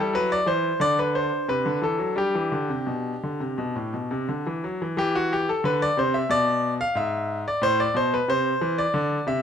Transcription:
Already playing: G3 E4
0.00 A4
0.13 F#3 B4
0.32 D5
0.46 E3 C5
0.79 D3 D4 D5
0.99 B4
1.15 C5
1.48 C3 B4
1.66 D3
1.82 E3 A4
1.99 F#3
2.16 G3 D4 G4
2.35 E3
2.52 D3
2.69 C3
2.87 B2
3.23 D3
3.40 C3
3.58 B2
3.76 A2
3.94 B2
4.11 C3
4.29 D3
4.46 E3
4.64 F#3
4.82 E3
4.97 E3 G4
5.15 F#4
5.33 G4
5.49 A4
5.64 D3 B4
5.82 D5
5.97 C3 C5
6.14 E5
6.29 B2 D5
6.81 F5
6.95 G#2 E5
7.48 D5
7.61 A2 C5
7.80 D5
7.94 B2 C5
8.14 B4
8.28 C3 C5
8.61 E3
8.78 D5
8.94 D3
9.27 C3 E5

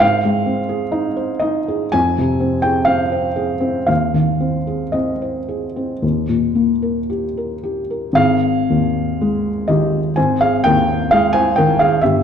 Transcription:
Already playing: G#2
0.00 F5
0.25 G#3
0.46 C4
0.69 G#4
0.92 D#4
1.17 C5
1.39 D#4 D#5
1.68 G#4
1.92 F2 G#5
2.18 C3
2.40 C4
2.62 G#4 G5
2.85 C4 F5
3.12 C5
3.36 G#4
3.60 C4
3.87 D#2 F5
4.14 D#3
4.41 C4
4.67 G#4
4.92 C4 D#5
5.22 C5
5.49 G#4
5.76 C4
6.02 D#2
6.29 A#2
6.55 A#3
6.82 A#4
7.10 G4
7.37 A#4
7.63 G4
7.90 A#4
8.13 G#1 G#4 F5
8.70 D#2
9.21 G#3
9.68 D#3 G4 D#5
10.16 G#1 C5 G#5
10.41 G#4 F5
10.64 D#2 A#4 G5
11.11 G#3 G#4 F5
11.33 C5 G#5
11.56 D#3 A#4 G5
11.79 G#4 F5
12.01 G1 G4 E5

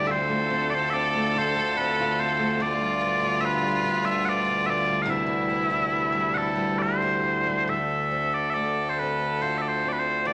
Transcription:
Already playing: D2 C3 D3 G3 C4 D4 G4
0.06 D3 F4 A4 E5
0.11 C5
0.29 A3
0.50 C4
0.70 F4 D5
0.74 C5
0.90 C4 D5 E5
1.14 A3
1.36 D3 F4 C5
1.56 A3
1.77 C4 B4
2.00 F4
2.19 C4 C5
2.39 A3
2.60 D2 B2 D3 G3 F4 D5
2.81 G3
3.01 B3
3.21 F4
3.40 B3 E5
3.45 B4
3.62 G3
3.82 D3 F4
4.03 G3 E5
4.24 B3 F#5
4.29 D5
4.45 F4
4.64 B3 E5
4.70 D5
4.86 G3
5.02 C3 D#4 F5
5.07 C3 G3 E4 E5
5.26 G3
5.49 B3
5.70 E4
5.90 B3
6.12 G3
6.34 C3 E4 A4 F#5
6.56 G3
6.79 C5 D5
7.02 E4
7.47 G3
7.67 D3 A4 E5
8.11 C4
8.34 D5
8.50 E5
8.54 A3 D5
8.89 C5
8.99 C4 B4
9.42 F4 C5
9.58 E5
9.62 D5
9.68 C5
9.83 C4
9.88 B4 D5
9.99 C5
10.25 E2 B4 D5

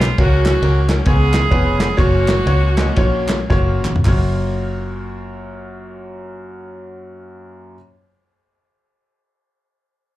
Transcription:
Already playing: B1 G#3 B3 F4
0.01 snare, clap, ride bell
0.18 C#2 C#3 A#3 C#4 F#4 A#4, kick, ride bell
0.46 A#3 C#4 F#4, snare, clap, ride bell
0.62 C#2 C#4 F#4 A#4, ride bell
0.89 C#4 F#4 A#4, snare, clap, ride bell
1.06 C#2 C#3 B3 C#4 F4 G#4 C#5, kick, ride bell
1.34 snare, clap, ride bell
1.51 F1 B3 C#4 F4 G#4 B4, kick, ride bell
1.80 snare, clap, ride bell
1.97 F#1 A#3 C#4 F4 F#4 C#5, kick, ride bell
2.28 snare, clap, ride bell
2.46 C#2 A#3 C#4 F4 F#4 C#5, ride bell
2.77 A#3 C#4 F4 F#4 D#5, snare, clap, ride bell
2.96 A#1 A#3 C#4 F4 F#4 C#5, kick, ride bell
3.29 snare, clap, ride bell
3.50 F#1 A#3 C#4 F4 F#4 C#5, kick, snare
3.85 G#1, clap, mid tom
3.96 floor tom
4.04 F#1 F#2 A#3 F4 F#4 C#5, kick, clap, open hi-hat

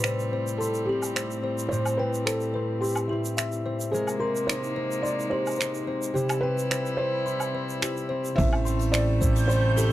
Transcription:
Already playing: A2 G3 C4 G4 B4
0.04 E4 C5, finger snap, shaker
0.19 shaker
0.32 C4 C5
0.47 shaker
0.58 E4 A4 C6, shaker
0.74 shaker
0.86 C4 G4
1.02 low woodblock, shaker
1.16 E4 C5, finger snap, shaker
1.31 shaker
1.43 C4 C5
1.58 shaker
1.69 A2 G4 C5, shaker
1.85 low woodblock, shaker
1.97 C4 B4 G5
2.14 shaker
2.25 E4 A4 C5, finger snap, shaker
2.41 shaker
2.54 C4 B4
2.81 E4 G4 C6, shaker
2.86 shaker
2.88 shaker
2.90 shaker
2.93 shaker
2.95 low woodblock, shaker
2.97 shaker
3.08 C4 E4 G4
3.25 shaker
3.37 E4 E5, finger snap, shaker
3.52 shaker
3.66 C4 C5
3.80 shaker
3.92 C3 G#3 A#3 G#4 A#4 C5, shaker
4.07 low woodblock, shaker
4.19 C4 A#4 C6
4.36 shaker
4.47 D#4 C5, finger snap, shaker
4.63 shaker
4.76 C4 C5
4.91 shaker
5.02 D#4 D5 C6, shaker
5.20 shaker
5.30 C4 G4 C5
5.46 low woodblock, shaker
5.51 shaker
5.55 D#4 C5, shaker
5.61 finger snap, shaker
5.75 shaker
5.87 C4 C5
6.02 shaker
6.14 C3 G3 E4 G4 C5, shaker
6.29 finger snap, low woodblock, shaker
6.41 C4 B4 G5
6.58 shaker
6.70 E4 C5, finger snap, shaker
6.86 shaker
6.97 C4 B4 C5
7.26 E4 C6, shaker
7.40 low woodblock, shaker
7.54 C4 C5
7.69 shaker
7.82 E4 G4, finger snap, shaker
7.97 shaker
8.09 C4 C5
8.25 shaker
8.36 A1 A2 C3 G3 A3 C5 E5, kick, open hi-hat, shaker
8.40 G6
8.53 low woodblock
8.65 C4 C6, open hi-hat, shaker
8.79 open hi-hat, shaker
8.92 A4 C5 D5, finger snap, open hi-hat, shaker
9.21 E4 C5, kick, shaker
9.35 open hi-hat, shaker
9.48 A4 C5 C6, open hi-hat, shaker
9.77 E4 G4 A4, open hi-hat, shaker

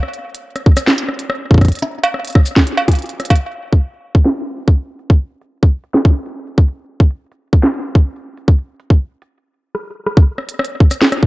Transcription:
0.03 cross-stick
0.13 closed hi-hat
0.35 closed hi-hat
0.56 cross-stick, closed hi-hat
0.66 kick
0.77 cross-stick, closed hi-hat, shaker
0.87 snare
0.98 closed hi-hat
1.09 cross-stick
1.19 closed hi-hat
1.30 cross-stick
1.51 kick
1.54 kick
1.58 kick
1.61 kick, cross-stick, closed hi-hat
1.65 kick, closed hi-hat
1.68 kick, closed hi-hat
1.72 closed hi-hat
1.75 closed hi-hat
1.79 cross-stick, closed hi-hat
1.82 closed hi-hat
2.04 closed hi-hat, cowbell
2.14 cross-stick
2.25 closed hi-hat
2.27 closed hi-hat
2.30 closed hi-hat
2.35 kick, cross-stick
2.46 closed hi-hat, shaker
2.56 kick, snare
2.67 closed hi-hat
2.77 cowbell
2.88 kick, cross-stick, closed hi-hat
2.92 closed hi-hat
2.95 closed hi-hat
2.99 closed hi-hat
3.02 closed hi-hat
3.06 closed hi-hat
3.09 closed hi-hat
3.20 cross-stick, closed hi-hat
3.25 closed hi-hat
3.30 kick, closed hi-hat, cowbell
3.36 closed hi-hat
3.73 kick
3.94 closed hi-hat
4.15 kick
4.25 snare
4.36 closed hi-hat
4.57 closed hi-hat
4.60 closed hi-hat
4.62 closed hi-hat
4.65 closed hi-hat
4.68 kick, closed hi-hat
4.70 closed hi-hat
4.73 closed hi-hat
4.75 closed hi-hat
4.78 closed hi-hat
4.99 closed hi-hat
5.10 kick
5.41 closed hi-hat
5.63 kick
5.84 closed hi-hat
5.94 snare
6.05 kick
6.26 closed hi-hat
6.47 closed hi-hat
6.58 kick
6.68 closed hi-hat
7.00 kick
7.11 closed hi-hat
7.32 closed hi-hat
7.53 kick
7.63 snare
7.74 closed hi-hat
7.95 kick
8.16 closed hi-hat
8.37 closed hi-hat
8.48 kick
8.59 closed hi-hat
8.80 closed hi-hat
8.90 kick
9.22 closed hi-hat
9.75 cross-stick
10.06 cross-stick
10.17 kick
10.38 cross-stick
10.49 closed hi-hat
10.59 cross-stick
10.65 closed hi-hat
10.80 kick
10.91 cross-stick, closed hi-hat, shaker
11.02 snare
11.12 cross-stick, closed hi-hat
11.23 kick

